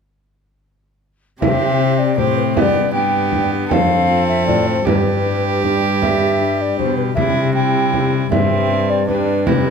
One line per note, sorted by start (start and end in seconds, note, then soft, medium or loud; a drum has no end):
1.41 2.58 C3 soft
1.41 2.20 C3 medium
1.41 2.15 C4 medium
1.41 2.15 G4 medium
1.41 2.00 E5 medium
1.41 frame drum medium
1.80 2.16 C4 soft
1.80 2.16 E4 soft
1.80 2.17 G4 soft
1.99 2.20 D5 medium
2.17 2.58 A2 medium
2.17 2.57 C4 medium
2.17 2.58 C4 medium
2.17 2.58 E4 soft
2.17 2.56 G4 medium
2.17 2.95 G4 medium
2.17 2.36 C5 medium
2.17 frame drum soft
2.37 2.43 B4 medium
2.56 3.70 G2 medium
2.56 3.73 G2 medium
2.56 2.94 B3 medium
2.56 2.94 G4 medium
2.56 2.62 E5 medium
2.56 frame drum medium
2.61 2.92 D5 medium
2.93 3.72 B3 medium
2.93 3.30 B3 soft
2.93 3.30 D4 soft
2.93 3.69 G4 medium
2.93 3.31 G4 medium
2.93 3.50 G5 medium
3.31 3.72 B3 medium
3.31 3.72 D4 medium
3.31 3.72 G4 medium
3.31 frame drum medium
3.69 4.87 F2 medium
3.69 4.49 F2 medium
3.69 4.85 C4 medium
3.69 4.87 A4 medium
3.69 3.74 G5 loud
3.69 frame drum medium
3.73 4.24 F5 loud
4.09 4.47 C4 soft
4.09 4.47 F4 soft
4.09 4.48 A4 medium
4.29 4.46 E5 medium
4.47 4.86 A2 medium
4.47 4.88 A2 medium
4.47 4.88 C4 soft
4.47 4.88 F4 soft
4.47 4.88 A4 medium
4.47 4.69 D5 medium
4.47 frame drum medium
4.67 4.88 C5 medium
4.85 7.19 G2 soft
4.85 6.75 G2 medium
4.85 7.13 G3 medium
4.85 7.17 G4 medium
4.85 5.64 B4 medium
4.85 frame drum medium
5.24 5.64 D4 soft
5.24 5.64 G4 soft
5.64 6.40 D4 soft
5.64 6.40 G4 soft
5.64 frame drum soft
6.02 6.63 E5 medium
6.02 frame drum medium
6.41 6.77 D4 soft
6.41 6.78 G4 soft
6.61 6.78 D5 medium
6.78 7.19 B2 medium
6.78 7.17 B2 medium
6.78 7.18 D4 soft
6.78 7.55 G4 soft
6.78 6.97 C5 medium
6.78 frame drum soft
6.97 7.03 B4 medium
7.15 8.33 C3 medium
7.15 8.30 C3 medium
7.15 7.54 G3 medium
7.15 7.55 E4 medium
7.15 7.54 E5 medium
7.15 frame drum medium
7.54 8.30 G3 medium
7.54 7.92 E4 soft
7.54 8.31 E4 medium
7.54 7.93 G4 soft
7.54 8.11 G5 medium
7.93 8.33 E4 medium
7.93 8.71 G4 medium
7.93 frame drum medium
8.31 9.47 G2 medium
8.31 9.05 G3 medium
8.31 9.05 C4 medium
8.31 8.91 E5 loud
8.31 frame drum medium
8.72 9.11 C4 soft
8.72 9.08 G4 medium
8.90 9.08 D5 medium
9.08 9.47 G3 medium
9.08 9.48 D4 medium
9.08 9.49 D4 soft
9.08 9.70 G4 soft
9.08 9.47 B4 medium
9.08 frame drum soft
9.46 9.70 C3 medium
9.46 9.70 C3 soft
9.46 9.70 G3 medium
9.46 9.70 E4 medium
9.46 9.70 B4 medium
9.46 frame drum medium